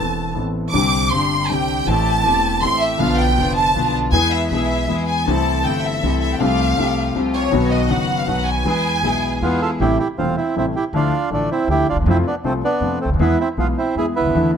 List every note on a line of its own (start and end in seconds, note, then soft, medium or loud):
0.00 0.34 E1 soft
0.00 0.34 E2 soft
0.00 0.32 E3 soft
0.00 0.34 B3 soft
0.00 0.35 C4 soft
0.00 0.35 A4 soft
0.00 0.37 A5 medium
0.34 0.72 A1 soft
0.34 0.72 A2 soft
0.34 0.71 E3 soft
0.34 0.72 B3 soft
0.34 0.72 C4 soft
0.38 0.73 A4 soft
0.72 1.10 C2 medium
0.72 1.10 C3 medium
0.72 1.09 D3 soft
0.72 1.10 G3 soft
0.72 1.10 C4 soft
0.72 1.10 D4 soft
0.72 1.10 G4 medium
0.72 1.08 D6 medium
0.76 1.11 G4 medium
1.10 1.48 G1 soft
1.10 1.48 G2 soft
1.10 1.47 D3 soft
1.10 1.48 G3 soft
1.10 1.47 C4 soft
1.10 1.48 C4 soft
1.10 1.48 D4 soft
1.10 1.48 G4 soft
1.10 1.49 G4 soft
1.10 1.50 C6 medium
1.48 1.86 C2 soft
1.48 1.86 C3 soft
1.48 1.85 D3 soft
1.48 1.86 G3 soft
1.48 1.85 C4 soft
1.48 1.86 C4 soft
1.48 1.85 D4 soft
1.48 1.85 G4 soft
1.48 1.87 G5 medium
1.53 1.87 G4 soft
1.85 2.23 A1 medium
1.85 2.23 A2 medium
1.85 2.21 E3 soft
1.85 2.22 A3 soft
1.85 2.23 A3 medium
1.85 2.23 C4 soft
1.85 2.24 C4 soft
1.85 2.23 G4 medium
1.85 2.63 A5 medium
1.89 2.24 G4 medium
2.22 2.60 E1 soft
2.22 2.60 E2 soft
2.22 2.59 E3 soft
2.22 2.60 A3 soft
2.22 2.61 A3 soft
2.22 2.61 C4 soft
2.22 2.61 G4 soft
2.26 2.61 E1 soft
2.26 2.61 G4 soft
2.60 2.98 A1 soft
2.60 2.99 A1 soft
2.60 2.98 A2 soft
2.60 2.97 E3 soft
2.60 2.97 A3 soft
2.60 2.98 A3 soft
2.60 2.98 C4 soft
2.60 2.98 G4 soft
2.60 2.82 C6 medium
2.64 2.99 G4 soft
2.81 3.00 E5 medium
2.97 3.35 B1 medium
2.97 3.35 B2 medium
2.97 3.34 D3 medium
2.97 3.35 F3 soft
2.97 3.35 B3 medium
2.97 3.36 B3 soft
2.97 3.36 D4 soft
2.97 3.36 F4 medium
2.97 3.19 F5 medium
3.19 3.57 G5 medium
3.36 3.73 F1 soft
3.36 3.73 F2 soft
3.36 3.72 D3 soft
3.36 3.73 F3 soft
3.36 3.73 B3 soft
3.36 3.73 D4 soft
3.36 3.73 F4 soft
3.36 3.74 F4 soft
3.57 3.91 A5 medium
3.73 4.11 B1 medium
3.73 4.11 B1 soft
3.73 4.11 B2 soft
3.73 4.10 D3 soft
3.73 4.11 F3 soft
3.73 4.11 B3 soft
3.73 4.11 D4 soft
3.73 4.11 F4 soft
3.73 4.12 F4 soft
4.12 4.48 E2 medium
4.12 4.49 E2 medium
4.12 4.49 E3 medium
4.12 4.48 G#3 soft
4.12 4.48 B3 medium
4.12 4.49 B3 soft
4.12 4.48 E4 soft
4.12 4.49 G#4 medium
4.12 4.50 G#4 medium
4.12 4.30 G#5 loud
4.32 4.50 E5 medium
4.50 4.87 B1 soft
4.50 4.88 B2 soft
4.50 4.85 E3 soft
4.50 4.87 G#3 soft
4.50 4.86 B3 soft
4.50 4.88 B3 soft
4.50 4.86 E4 soft
4.50 4.86 G#4 soft
4.50 5.04 E5 medium
4.55 4.89 G#4 soft
4.87 5.25 E2 soft
4.87 5.24 E3 soft
4.87 5.25 G#3 soft
4.87 5.25 B3 soft
4.87 5.25 E4 soft
4.87 5.25 G#4 soft
4.91 5.26 G#4 soft
5.08 5.27 G#5 medium
5.25 5.63 C2 medium
5.25 5.63 C3 medium
5.25 5.62 E3 medium
5.25 5.63 A3 soft
5.25 5.63 C4 medium
5.25 5.64 C4 soft
5.25 5.63 E4 soft
5.25 5.63 A4 medium
5.25 5.65 A5 medium
5.29 5.64 G4 medium
5.63 6.01 G1 soft
5.63 6.01 G2 soft
5.63 6.00 E3 soft
5.63 6.01 A3 soft
5.63 6.00 C4 soft
5.63 6.01 C4 soft
5.63 6.00 E4 soft
5.63 6.00 A4 soft
5.63 5.84 G5 medium
5.67 6.02 G4 soft
5.84 6.20 E5 medium
6.01 6.39 C2 soft
6.01 6.39 C3 soft
6.01 6.38 E3 soft
6.01 6.38 A3 soft
6.01 6.38 C4 soft
6.01 6.39 C4 soft
6.01 6.38 E4 soft
6.01 6.40 G4 soft
6.01 6.38 A4 soft
6.21 6.33 E5 medium
6.34 6.41 G5 medium
6.38 6.76 C2 medium
6.38 6.76 C3 medium
6.38 6.75 F3 medium
6.38 6.76 A3 soft
6.38 6.76 A3 medium
6.38 6.77 C4 soft
6.38 6.76 F4 soft
6.38 6.76 G4 medium
6.38 7.16 F5 medium
6.43 6.77 G4 medium
6.76 7.14 C2 soft
6.76 7.14 C3 soft
6.76 7.12 F3 soft
6.76 7.13 A3 soft
6.76 7.14 C4 soft
6.76 7.13 F4 soft
6.76 7.13 G4 soft
6.80 7.15 G4 soft
7.14 7.51 C2 soft
7.14 7.51 C3 soft
7.14 7.50 F3 soft
7.14 7.51 A3 soft
7.14 7.52 C4 soft
7.14 7.51 F4 soft
7.14 7.51 G4 soft
7.18 7.52 G4 soft
7.35 7.70 C#5 medium
7.50 7.88 B1 medium
7.50 7.89 B1 medium
7.50 7.88 B2 medium
7.50 7.86 D#3 medium
7.50 7.87 F#3 medium
7.50 7.88 B3 medium
7.50 7.88 D#4 medium
7.50 7.89 F#4 medium
7.54 7.89 F#4 medium
7.71 7.90 D#5 medium
7.88 8.26 F#1 soft
7.88 8.26 F#2 soft
7.88 8.24 D#3 soft
7.88 8.25 F#3 soft
7.88 8.26 B3 soft
7.88 8.26 D#4 soft
7.88 8.26 F#4 soft
7.88 8.27 F#4 soft
7.88 8.18 F#5 medium
8.19 8.28 F5 medium
8.25 8.63 B1 soft
8.25 8.64 B1 soft
8.25 8.64 B2 soft
8.25 8.63 D#3 soft
8.25 8.63 F#3 soft
8.25 8.63 B3 soft
8.25 8.64 B3 soft
8.25 8.64 D#4 soft
8.25 8.64 F#4 soft
8.25 8.47 F#5 medium
8.47 9.61 G#5 medium
8.64 9.02 E2 medium
8.64 9.01 E3 medium
8.64 9.02 G#3 soft
8.64 9.02 B3 medium
8.64 9.02 B3 soft
8.64 9.02 E4 soft
8.64 9.02 G#4 medium
8.68 9.03 G#4 medium
9.02 9.39 B1 soft
9.02 9.40 B1 soft
9.02 9.40 B2 soft
9.02 9.39 E3 soft
9.02 9.40 G#3 soft
9.02 9.40 B3 soft
9.02 9.41 B3 soft
9.02 9.40 E4 soft
9.02 9.40 G#4 soft
9.02 9.41 G#4 soft
9.40 9.78 E2 soft
9.40 9.79 E2 soft
9.40 9.42 E3 soft
9.40 9.79 E3 soft
9.40 9.78 G#3 soft
9.40 9.78 B3 soft
9.40 9.60 B3 medium
9.40 9.79 B3 soft
9.40 9.78 E4 soft
9.40 9.61 F4 medium
9.40 9.78 G#4 soft
9.44 9.79 G#4 soft
9.62 9.71 F4 medium
9.62 9.70 A4 medium
9.80 9.96 A1 medium
9.80 9.97 A1 medium
9.80 9.96 A2 medium
9.80 9.96 C3 medium
9.80 9.96 G3 soft
9.80 9.97 A3 soft
9.80 9.98 E4 medium
9.80 9.97 E4 medium
9.80 9.98 G4 medium
9.99 10.08 E4 soft
9.99 10.08 G4 medium
10.18 10.34 E1 soft
10.18 10.35 E1 soft
10.18 10.34 E2 soft
10.18 10.34 C3 soft
10.18 10.35 G3 soft
10.18 10.34 A3 soft
10.18 10.36 C4 soft
10.18 10.34 E4 soft
10.18 10.36 F4 medium
10.37 10.55 C4 soft
10.37 10.56 E4 medium
10.56 10.72 A1 soft
10.56 10.72 A2 soft
10.56 10.72 C3 soft
10.56 10.72 G3 soft
10.56 10.72 A3 soft
10.56 10.66 C4 soft
10.56 10.72 E4 soft
10.56 10.66 E4 medium
10.76 10.85 E4 soft
10.76 10.84 G4 medium
10.93 11.09 D2 medium
10.93 11.10 D2 medium
10.93 11.10 D3 medium
10.93 11.10 F3 medium
10.93 11.10 A3 soft
10.93 11.30 D4 medium
10.93 11.10 E4 medium
10.93 11.29 F4 medium
11.30 11.47 A1 soft
11.30 11.47 A2 soft
11.30 11.47 D3 soft
11.30 11.47 F3 soft
11.30 11.47 A3 soft
11.30 11.50 A3 medium
11.30 11.50 D4 medium
11.30 11.47 E4 soft
11.51 11.69 C4 soft
11.51 11.68 E4 medium
11.68 11.84 D2 soft
11.68 11.85 D2 soft
11.68 11.85 D3 soft
11.68 11.85 F3 soft
11.68 11.85 A3 soft
11.68 11.85 E4 soft
11.68 11.87 E4 medium
11.68 11.87 G4 medium
11.89 11.95 D2 soft
11.89 11.98 D2 soft
11.89 11.97 D4 soft
11.89 11.97 F4 medium
11.96 12.00 D#2 soft
11.96 12.02 D#2 soft
12.01 12.05 E2 medium
12.01 12.07 E2 medium
12.06 12.22 F2 medium
12.06 12.23 F2 medium
12.06 12.23 C3 medium
12.06 12.23 F3 medium
12.06 12.23 A3 medium
12.06 12.17 C4 medium
12.06 12.17 E4 medium
12.06 12.23 F4 medium
12.27 12.36 B3 soft
12.27 12.35 D4 medium
12.44 12.60 C2 soft
12.44 12.60 C3 soft
12.44 12.60 F3 soft
12.44 12.60 A3 soft
12.44 12.53 A3 medium
12.44 12.53 C4 medium
12.44 12.60 F4 soft
12.64 12.99 B3 medium
12.64 12.99 D4 medium
12.81 12.97 F2 soft
12.81 12.98 F2 soft
12.81 12.98 C3 soft
12.81 12.98 F3 soft
12.81 12.98 A3 soft
12.81 12.98 F4 soft
13.01 13.09 C#2 soft
13.01 13.10 A3 soft
13.01 13.10 C4 medium
13.06 13.10 C#2 soft
13.10 13.13 D2 soft
13.10 13.16 D2 soft
13.10 13.19 D#2 medium
13.15 13.20 D#2 medium
13.19 13.36 E2 medium
13.19 13.36 E3 medium
13.19 13.36 G#3 medium
13.19 13.36 B3 medium
13.19 13.38 B3 medium
13.19 13.39 E4 medium
13.19 13.36 G#4 medium
13.40 13.49 C4 soft
13.40 13.49 E4 medium
13.57 13.74 B1 soft
13.57 13.74 B2 soft
13.57 13.74 E3 soft
13.57 13.74 G#3 soft
13.57 13.74 B3 soft
13.57 13.67 B3 medium
13.57 13.68 F4 medium
13.57 13.74 G#4 soft
13.78 13.95 C4 soft
13.78 13.95 E4 medium
13.95 14.12 E2 soft
13.95 14.13 E2 soft
13.95 14.13 E3 soft
13.95 14.13 G#3 soft
13.95 14.13 B3 soft
13.95 14.06 E4 medium
13.95 14.13 G#4 soft
13.95 14.06 G#4 medium
14.16 14.51 B3 soft
14.16 14.51 E4 medium
14.20 14.24 C#2 soft
14.20 14.25 C#2 soft
14.25 14.29 D2 soft
14.25 14.30 D2 soft
14.30 14.34 D#2 medium
14.30 14.35 D#2 medium
14.35 14.51 E2 medium
14.35 14.51 D3 medium
14.35 14.51 E3 medium
14.35 14.51 A3 soft
14.35 14.51 B3 medium
14.35 14.51 E4 medium